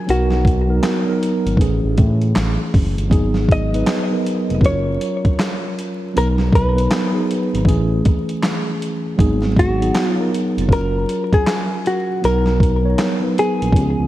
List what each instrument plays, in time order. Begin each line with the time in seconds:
0.07 analog synth bass B1, tine electric piano F#3 B3 D#4 A#4, hollow-body jazz guitar F#4, closed hi-hat
0.30 snare
0.45 kick, closed hi-hat
0.67 tine electric piano F#3 B3 D#4 A#4
0.83 snare, clap, closed hi-hat
1.07 tine electric piano F#3 B3 D#4 A#4
1.23 closed hi-hat
1.46 analog synth bass G#1, closed hi-hat
1.57 analog synth bass A1, tine electric piano E3 A3 C#4 G#4, kick, closed hi-hat
1.84 analog synth bass A1
1.98 analog synth bass A2, kick, closed hi-hat
2.21 closed hi-hat
2.36 analog synth bass A1, snare, clap, closed hi-hat
2.74 analog synth bass F#1, kick, open hi-hat
2.98 analog synth bass G1, closed hi-hat
3.08 analog synth bass G#1, tine electric piano F#3 B3 D#4 G#4, kick
3.13 closed hi-hat
3.34 snare
3.49 hollow-body jazz guitar D#5, kick, closed hi-hat
3.72 tine electric piano F#3 B3 D#4 B4, closed hi-hat
3.86 snare, clap, closed hi-hat
4.09 tine electric piano F#3 B3 D#4 A#4
4.26 closed hi-hat
4.50 analog synth bass F1, closed hi-hat
4.61 analog synth bass F#1, tine electric piano F#3 C#4 F4 A#4, kick, closed hi-hat
4.66 hollow-body jazz guitar C#5
5.01 closed hi-hat
5.25 kick, closed hi-hat
5.39 snare, clap, closed hi-hat
5.79 closed hi-hat
6.14 analog synth bass B1, tine electric piano F#3 B3 D#4 A#4, hollow-body jazz guitar A#4, closed hi-hat
6.38 snare
6.53 hollow-body jazz guitar B4, kick, closed hi-hat
6.74 tine electric piano F#3 B3 D#4 B4
6.78 closed hi-hat
6.91 snare, clap, closed hi-hat
7.11 tine electric piano F#3 B3 D#4 G#4
7.31 closed hi-hat
7.54 analog synth bass G#1, closed hi-hat
7.65 analog synth bass A1, tine electric piano E3 A3 C#4 G#4, kick, closed hi-hat
8.05 kick, closed hi-hat
8.29 closed hi-hat
8.43 snare, clap, closed hi-hat
8.82 closed hi-hat
9.16 analog synth bass G#1, tine electric piano F#3 B3 D#4 G#4, kick, closed hi-hat
9.42 snare
9.56 hollow-body jazz guitar F#4, kick, closed hi-hat
9.79 tine electric piano F#3 B3 D#4 G#4, closed hi-hat
9.95 snare, clap, closed hi-hat
10.08 hollow-body jazz guitar F4
10.18 tine electric piano F#3 B3 D#4 A#4
10.35 closed hi-hat
10.57 analog synth bass F1, closed hi-hat
10.68 analog synth bass F#1, tine electric piano F#3 C#4 F4 A#4, kick
10.72 hollow-body jazz guitar A#4, closed hi-hat
11.09 closed hi-hat
11.33 hollow-body jazz guitar G#4, kick, closed hi-hat
11.47 snare, clap, closed hi-hat
11.86 hollow-body jazz guitar F#4, closed hi-hat
12.22 analog synth bass B1, tine electric piano F#3 B3 D#4 A#4, hollow-body jazz guitar A#4, closed hi-hat
12.46 snare
12.60 kick, closed hi-hat
12.82 tine electric piano F#3 B3 D#4 C#5
12.98 snare, clap, closed hi-hat
13.20 tine electric piano F#3 B3 D#4 B4
13.38 hollow-body jazz guitar G#4, closed hi-hat
13.61 analog synth bass A#1, closed hi-hat
13.73 analog synth bass C#2, tine electric piano F3 B3, kick, closed hi-hat
13.77 tine electric piano C#4 G4
13.85 tine electric piano G#4
13.99 analog synth bass C#2